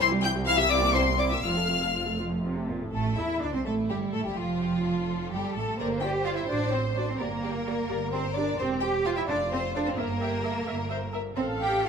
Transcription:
0.00 C2 E3 E4 C6
0.12 G3 G4
0.22 E3 E4 G5 G6
0.35 G3 G4
0.46 E3 E4 F5 F6
0.58 G3 G4 E5 E6
0.70 C4 E4 D5 D6
0.82 A#3 G4
0.94 C4 E4 C5 C6
1.06 A#3 G4
1.18 C4 E4 D5 D6
1.30 A#3 G4 E5 E6
1.43 F1 F2 C4 F4 F5 F6
1.57 A3 A4
1.69 C4 F4
1.81 A3 A4
1.94 C4 F4
2.06 A3 A4
2.18 F2 C4 F4
2.30 A3 A4
2.43 C3 C4 F4
2.56 A3 A4
2.69 A#2 C4 F4
2.82 A2 A3 A4
2.92 A1 A3 A4
3.17 E2 E4 E5
3.41 D2 D4 D5
3.53 C2 C4 C5
3.65 A1 A3 E4 A4
3.89 G1 G3 G4
4.13 A1 A3 A4
4.25 G1 G3 G4
4.37 F1 F3 F4
4.61 G4
4.85 A4
5.32 G1 G3 G4
5.56 A1 A3 A4
5.78 G1 A#3 G4 A#4 C5 D5
6.02 G4 D5 G5
6.25 F4 G4 D5 F5
6.36 E4 E5
6.48 A1 D4 F#4 C5 D5
6.72 C4 F#4 C5
6.96 D4 F#4 C5 D5
7.07 C4 C5
7.19 G1 A#3 G4 A#4 D5
7.43 G4 D5
7.66 G4 A#4 D5
7.88 G1 G4 D5
8.11 C4 G4 C5 D5
8.34 D4 G4 D5
8.57 E1 C4 G4 C5
8.80 G4 C5 G5
9.05 F4 G4 C5 F5
9.16 E4 E5
9.27 F1 D4 F4 A4 C5 D5
9.51 C4 A4 C5
9.75 D4 A4 C5 D5
9.86 C4 C5
9.96 G1 A#3 A#4 E5
10.20 G4 A#4 E5
10.44 A4 A#4 E5
10.66 G1 A#4 E5
10.89 A#4 C5 E5
11.13 A#4 E5
11.36 A1 C4 A4 C5 F5
11.61 G4 G5
11.84 F4 F5

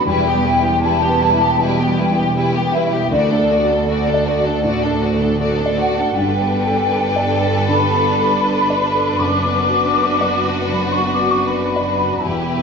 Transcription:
0.06 E1 E2 G3 E4 B4 G5
0.26 B3 G4
0.34 G3
0.45 G3 E4 B4
0.59 E4
0.64 B3 G4
0.83 G3 E4 G4 B4 A5
1.02 B3 G4
1.09 B4
1.22 G3 E4 B4
1.34 E4
1.41 B3 G4
1.59 B2 G3 E4 B4 G5
1.79 B3 G4
1.85 G3
1.98 G3 E4 B4
2.11 E4
2.17 B3 G4
2.36 G3 E4 G4 B4
2.55 B3 G4
2.61 B4
2.73 G3 E4 B4 E5
2.87 E4
2.92 B3 G4
3.11 D2 A3 F#4 D5
3.30 D4 A4
3.39 A3
3.50 A3 F#4 D5
3.63 F#4
3.69 D4 A4
3.88 A3 F#4 A4 D5
4.07 D4 A4
4.14 D5
4.26 A3 F#4 D5
4.39 F#4
4.45 D4 A4
4.64 A2 A3 F#4 D5
4.83 D4 A4
4.91 A3
5.01 A3 F#4 D5
5.16 F#4
5.21 D4 A4
5.39 A3 F#4 A4 D5
5.58 D4 A4
5.66 D5
5.77 A3 F#4 D5 F#5
5.91 F#4
5.97 D4 A4
6.15 G1 G2 D4 A4 B4 G5
6.42 B3
6.66 A4
6.91 B4
7.16 D5
7.44 A4
7.67 D3 B5
7.94 B3
8.20 A4
8.46 B4
8.70 D5
8.95 A4
9.19 F#1 F#2 F#4 D6
9.45 B3
9.70 F#4
9.96 B4
10.21 D5
10.47 F#4
10.72 F#3 B5
10.93 C#6
10.99 B3
11.10 D6
11.24 F#4
11.29 C#6
11.47 B4 B5
11.76 D5
12.01 F#4
12.24 E1 E2 E4 G4 B4 G5
12.51 B3

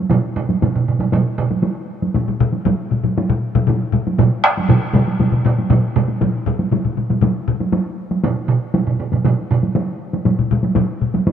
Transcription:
0.11 taiko mid, taiko high
0.36 taiko mid
0.49 taiko high
0.62 taiko mid, taiko high
0.76 taiko mid
0.88 taiko mid
1.00 taiko mid, taiko high
1.12 taiko mid, taiko high
1.38 taiko mid
1.51 taiko high
1.63 taiko high
2.02 taiko high
2.14 taiko low-mid, taiko high
2.28 taiko low-mid
2.40 taiko low-mid
2.53 taiko high
2.65 taiko low-mid, taiko high
2.91 taiko low-mid
3.04 taiko low-mid, taiko high
3.18 taiko high
3.30 taiko low-mid
3.55 taiko low-mid, taiko high
3.67 taiko low-mid, taiko high
3.92 taiko low-mid
4.07 taiko high
4.19 taiko low-mid, taiko mid, taiko high
4.44 taiko rim
4.57 taiko high
4.68 taiko low-mid, taiko mid, taiko high
4.94 taiko low-mid, taiko mid, taiko high
5.08 taiko high
5.19 taiko low-mid, taiko mid, taiko high
5.32 taiko low-mid, taiko mid
5.45 taiko low-mid, taiko mid
5.59 taiko high
5.70 taiko low-mid, taiko mid, taiko high
5.96 taiko low-mid, taiko mid
6.08 taiko high
6.21 taiko low-mid, taiko high
6.46 taiko low-mid
6.59 taiko high
6.72 taiko low-mid, taiko high
6.85 taiko low-mid
6.97 taiko low-mid
7.10 taiko low-mid, taiko high
7.21 taiko low-mid, taiko high
7.48 taiko low-mid
7.60 taiko high
7.72 taiko high
8.11 taiko high
8.24 taiko mid, taiko high
8.49 taiko mid
8.74 taiko mid, taiko high
8.87 taiko mid
9.00 taiko mid
9.12 taiko mid, taiko high
9.25 taiko mid, taiko high
9.51 taiko mid
9.63 taiko high
9.75 taiko high
10.13 taiko high
10.25 taiko low-mid, taiko high
10.39 taiko low-mid
10.51 taiko low-mid
10.63 taiko high
10.75 taiko low-mid, taiko high
11.01 taiko low-mid
11.14 taiko low-mid, taiko high
11.27 taiko high

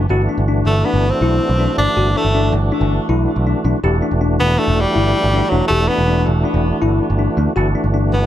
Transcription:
0.09 G1 E3 A3 D4 F#4
0.29 D4
0.37 G1
0.48 D4
0.65 G1 A3
0.85 B3 D4
0.93 G1
1.10 C4
1.21 B1 E4
1.49 B1
1.60 D4
1.78 G1 D4
1.97 G1 F#4
2.16 A3 D4
2.24 G1
2.34 D4
2.52 G1
2.72 D4
2.81 G1
3.09 B1 E4
3.36 B1
3.47 D4
3.64 B1 D4
3.83 E1 E3 A3 D4 F#4 G4
4.02 D4
4.11 E1
4.21 D4
4.39 E1 B3
4.58 A3 D4
4.67 E1
4.80 G3
4.95 G1 E4
5.24 G1
5.33 D4
5.49 E1 F#3 D4
5.68 E1 A3 G4
5.87 B3 D4
5.98 E1
6.08 D4
6.27 E1
6.45 D4
6.54 E1
6.82 G1 E4
7.10 G1
7.19 D4
7.37 D2 D4
7.56 G1 E3 A3 D4 F#4
7.75 D4
7.84 G1
7.94 D4
8.12 G1 B3

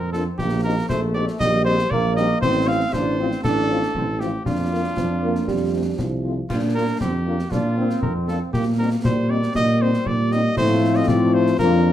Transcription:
Already playing: F2 C4 A#4
0.13 A#3 D4 F4 A4, snare
0.38 A#1 A#3 G4, concert bass drum, snare
0.64 G3 C4 D#4 A#4
0.89 A#1 A3 C5, concert bass drum, snare
1.14 G3 C4 D#4 D5
1.28 snare
1.40 A#1 G3 D#5, concert bass drum, snare
1.65 G3 C4 D#4 C5
1.79 snare
1.90 A#1 A#3 D5, concert bass drum
2.16 G3 C4 D#4 D#5, snare
2.42 A1 C4 C5, concert bass drum, snare, crash
2.68 F3 C4 F4 F5
2.93 A1 D4 C5, concert bass drum, snare
3.19 F3 C4 F4
3.32 snare
3.43 A1 D4 A4, concert bass drum, snare
3.70 F3 C4 F4
3.83 snare
3.95 A1 C4, concert bass drum
4.20 F3 C4 F4 G4, snare
4.45 F2 D4 F4, concert bass drum, snare
4.71 A#3 D4 F4
4.96 F2 F3, concert bass drum, snare
5.23 A#3 D4 F4
5.35 snare
5.47 F2 G3, concert bass drum, snare
5.73 A3 C4 F4
5.98 C2 F3, concert bass drum, snare
6.24 A3 C4 F4
6.49 A#2 D4 F4, concert bass drum, snare, crash
6.75 A#3 D4 F4 A#4
7.00 F2 C4 G4, concert bass drum, snare
7.26 A#3 D4 F4
7.39 snare
7.51 A#2 D4 F4, concert bass drum, snare
7.77 A#3 C4 D4 F4
7.90 snare
8.02 F2 A#4, concert bass drum
8.28 A#3 D4 F4 A4, snare
8.53 A#2 A#3 G4, concert bass drum, snare
8.79 G3 C4 D#4 A#4
9.04 A#2 G3 C5, concert bass drum, snare
9.29 G3 C4 D#4 D5
9.43 snare
9.54 A#2 D#5, concert bass drum, snare
9.80 G3 C4 D#4 C5
9.94 snare
10.05 A#2 D5, concert bass drum
10.31 G3 C4 D#4 D#5, snare
10.56 A2 F3 A3 C4 F4 C5, concert bass drum, snare, crash
10.96 D#5
11.08 A2 D5, concert bass drum, snare
11.34 C5
11.47 snare
11.58 F2 F3 A#3 D4 F4 A#4, concert bass drum, snare

